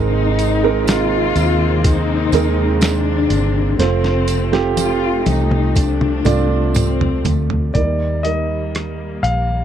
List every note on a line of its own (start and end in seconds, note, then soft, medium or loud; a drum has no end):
0.00 1.32 G#1 loud
0.00 1.32 G#2 medium
0.00 7.71 C3 medium
0.00 3.75 D#3 medium
0.00 0.59 G#3 medium
0.00 3.75 G#3 medium
0.00 3.75 A#3 medium
0.00 0.59 C4 medium
0.00 3.75 C4 medium
0.00 0.60 D#4 medium
0.00 0.88 D#4 loud
0.00 0.60 A#4 medium
0.39 closed hi-hat medium
0.39 tambourine medium
0.63 2.24 G#3 medium
0.63 2.25 C4 medium
0.63 2.25 D#4 medium
0.63 2.25 A#4 loud
0.87 1.85 F4 loud
0.87 snare loud
0.87 closed hi-hat medium
0.87 tambourine medium
1.36 2.29 D#2 medium
1.36 closed hi-hat medium
1.36 tambourine soft
1.84 2.82 D#4 loud
1.84 kick medium
1.84 closed hi-hat loud
1.84 tambourine medium
2.32 3.26 D#2 medium
2.32 3.72 D#3 medium
2.32 3.72 G#3 medium
2.32 3.72 C4 medium
2.32 3.72 A#4 loud
2.32 closed hi-hat medium
2.32 tambourine soft
2.81 3.75 D4 loud
2.81 snare loud
2.81 closed hi-hat medium
2.81 tambourine medium
3.30 3.76 G1 medium
3.30 closed hi-hat medium
3.30 tambourine soft
3.79 5.22 F1 loud
3.79 7.71 F3 medium
3.79 4.48 A3 medium
3.79 7.71 A3 medium
3.79 4.48 C4 medium
3.79 4.73 C4 loud
3.79 4.49 F4 medium
3.79 4.49 C5 medium
3.79 snare medium
3.79 closed hi-hat medium
4.04 snare medium
4.28 closed hi-hat medium
4.28 tambourine medium
4.52 6.16 A3 medium
4.52 6.17 C4 medium
4.52 6.17 F4 medium
4.52 6.17 G4 loud
4.52 snare medium
4.77 5.23 F4 loud
4.77 closed hi-hat medium
4.77 high tom medium
4.77 tambourine loud
5.26 6.21 C2 medium
5.26 5.76 D#4 medium
5.26 closed hi-hat medium
5.26 high tom medium
5.26 tambourine soft
5.51 mid tom medium
5.75 6.76 D4 loud
5.75 kick medium
5.75 closed hi-hat loud
5.75 tambourine soft
6.01 mid tom medium
6.25 7.21 C2 medium
6.25 7.67 A3 medium
6.25 7.67 C4 medium
6.25 7.67 F4 medium
6.25 7.68 D5 medium
6.25 closed hi-hat medium
6.25 mid tom medium
6.25 tambourine soft
6.74 7.25 C4 loud
6.74 closed hi-hat medium
6.74 mid tom loud
6.74 tambourine medium
7.01 floor tom medium
7.25 7.71 D2 medium
7.25 7.75 A3 medium
7.25 closed hi-hat medium
7.25 floor tom loud
7.25 tambourine soft
7.50 floor tom loud
7.74 9.20 D#2 medium
7.74 9.64 D#3 medium
7.74 9.20 D#3 soft
7.74 9.64 G3 medium
7.74 8.22 G3 soft
7.74 9.64 A#3 medium
7.74 8.23 D#4 soft
7.74 8.23 A#4 medium
7.74 8.26 D5 medium
7.74 kick medium
7.74 closed hi-hat medium
8.23 9.64 G3 medium
8.23 9.64 D#4 soft
8.23 9.64 A#4 medium
8.23 9.27 D#5 medium
8.23 closed hi-hat medium
8.75 cross-stick medium
8.75 closed hi-hat medium
9.23 9.64 A#1 medium
9.23 9.64 F5 medium
9.23 closed hi-hat medium